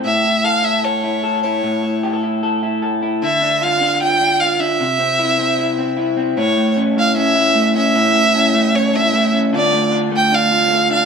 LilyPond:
<<
  \new Staff \with { instrumentName = "Violin" } { \time 4/4 \key a \phrygian \tempo 4 = 152 e''4 f''8 e''8 cis''4. cis''8~ | cis''4. r2 r8 | e''4 f''4 g''4 f''8 e''8~ | e''2.~ e''8 r8 |
cis''4 r8 f''8 e''4. e''8~ | e''2 cis''8 e''4 r8 | d''4 r8 g''8 f''4. f''8 | }
  \new Staff \with { instrumentName = "Clean electric guitar" } { \time 4/4 \key a \phrygian a,8 e'8 a'8 e'8 a'8 e'8 a'8 e'8 | a,8 e'8 g'16 a'16 e'8 a'8 e'8 a'8 e'8 | d8 d'8 f'8 d'8 f'8 d'8 f'8 d'8 | c8 c'8 e'8 c'8 e'8 c'8 e'8 c'8 |
<a, e'>8 a8 cis'8 a8 cis'8 e'8 a8 cis'8 | <a, e'>8 a8 cis'8 a8 cis'8 d'16 e'16 a8 cis'8 | <d f'>8 a8 d'8 a8 d'8 f'8 a8 d'8 | }
>>